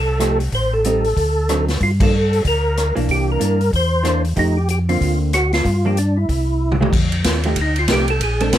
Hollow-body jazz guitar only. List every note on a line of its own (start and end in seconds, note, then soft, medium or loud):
0.20 0.38 F3 medium
0.20 0.38 A3 medium
0.20 0.39 D#4 medium
0.20 0.39 G4 medium
0.85 1.03 G3 soft
0.85 1.03 C4 medium
0.85 1.03 D#4 medium
1.49 1.67 D3 medium
1.49 1.67 F#3 medium
1.49 1.67 C4 medium
1.49 1.67 D#4 medium
2.01 2.12 F3 medium
2.01 2.12 A#3 medium
2.01 2.13 D4 medium
2.95 3.38 E3 medium
2.95 3.38 A#3 medium
2.95 3.39 D4 medium
3.39 3.58 E3 medium
3.39 3.58 A#3 medium
3.39 3.58 D4 medium
4.03 4.22 E3 medium
4.03 4.22 A#3 medium
4.03 4.23 D4 medium
4.36 4.54 F3 medium
4.36 4.55 A3 medium
4.36 4.55 D#4 medium
4.36 4.55 G4 medium
4.89 5.31 D3 medium
4.89 5.31 A#3 medium
4.89 5.31 C4 medium
5.85 5.96 F3 medium
5.85 5.96 A#3 medium
5.85 5.96 D4 medium
6.81 6.92 F3 medium
6.81 6.92 A3 medium
6.81 6.93 D#4 medium
6.81 6.93 G4 medium
7.45 7.56 F3 medium
7.45 7.56 A3 medium
7.45 7.57 D#4 medium
7.45 7.57 G4 medium
7.90 8.07 F3 medium
7.90 8.08 A3 medium
7.90 8.08 D#4 medium
7.90 8.08 G4 medium
8.41 8.52 G#3 medium
8.41 8.52 C4 medium
8.41 8.53 D4 medium